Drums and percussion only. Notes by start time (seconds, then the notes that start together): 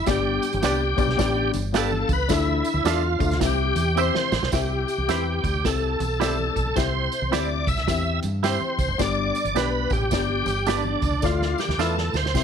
0.06 kick, snare, closed hi-hat, tambourine, muted conga
0.42 closed hi-hat, tambourine
0.53 closed hi-hat, high conga
0.62 snare, closed hi-hat, tambourine
0.98 kick, closed hi-hat, tambourine, low conga
1.08 snare, low conga
1.19 kick, snare, closed hi-hat, tambourine
1.53 closed hi-hat, tambourine, high conga
1.74 snare, closed hi-hat, tambourine
1.92 muted conga, high conga
2.09 kick, closed hi-hat, tambourine, high conga
2.29 kick, snare, closed hi-hat, tambourine, muted conga
2.48 muted conga, high conga
2.64 closed hi-hat, tambourine
2.77 high conga
2.85 snare, closed hi-hat, tambourine
3.05 muted conga
3.20 kick, closed hi-hat, tambourine, low conga
3.31 snare, closed hi-hat, low conga
3.41 kick, snare, closed hi-hat, tambourine
3.60 muted conga
3.76 closed hi-hat, tambourine, high conga
3.97 tambourine
4.15 snare, muted conga, high conga
4.32 snare, tambourine, high conga
4.43 snare, low conga
4.52 kick, snare, closed hi-hat, tambourine
4.71 muted conga
4.88 closed hi-hat, tambourine
4.99 high conga
5.09 snare, closed hi-hat, tambourine
5.27 muted conga
5.44 kick, closed hi-hat, tambourine, low conga
5.54 low conga
5.65 kick, snare, closed hi-hat, tambourine
5.83 muted conga
6.00 closed hi-hat, tambourine, high conga
6.21 snare, closed hi-hat, tambourine
6.39 muted conga, high conga
6.56 kick, closed hi-hat, tambourine, high conga
6.67 low conga
6.76 kick, snare, closed hi-hat, tambourine
6.95 muted conga
7.12 closed hi-hat, tambourine
7.22 high conga
7.32 snare, closed hi-hat, tambourine
7.67 kick, closed hi-hat, tambourine, low conga
7.77 snare, closed hi-hat, low conga
7.88 kick, snare, closed hi-hat, tambourine
8.05 muted conga
8.22 closed hi-hat, tambourine, high conga
8.43 snare, closed hi-hat, tambourine
8.61 muted conga, high conga
8.78 kick, closed hi-hat, tambourine, high conga
8.88 low conga
8.98 kick, snare, closed hi-hat, tambourine, muted conga
9.16 muted conga
9.35 closed hi-hat, tambourine
9.45 closed hi-hat, high conga
9.56 snare, closed hi-hat, tambourine
9.73 muted conga
9.90 kick, closed hi-hat, tambourine, low conga
10.01 low conga
10.11 kick, snare, closed hi-hat, tambourine
10.29 muted conga
10.46 closed hi-hat, tambourine, high conga
10.66 snare, closed hi-hat, tambourine, muted conga
10.84 muted conga, high conga
11.01 kick, closed hi-hat, tambourine, high conga
11.12 low conga
11.22 kick, snare, tambourine
11.40 snare, high conga
11.58 snare, tambourine
11.68 snare, high conga
11.78 snare, tambourine, muted conga
11.96 snare, muted conga
12.13 snare, tambourine, low conga
12.23 snare, low conga
12.35 kick, snare, tambourine